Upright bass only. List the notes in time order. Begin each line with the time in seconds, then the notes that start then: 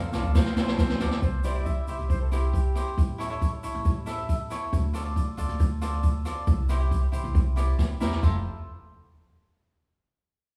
0.12 C2
0.23 D2
0.56 C2
0.90 F3
1.01 D2
1.22 C2
1.88 C2
1.99 C2
2.97 A1
3.63 A1
3.75 A1
4.72 D2
5.38 D2
5.49 D2
6.47 C2
7.13 C2
7.24 C2
7.79 D2
8.01 E2
8.23 F1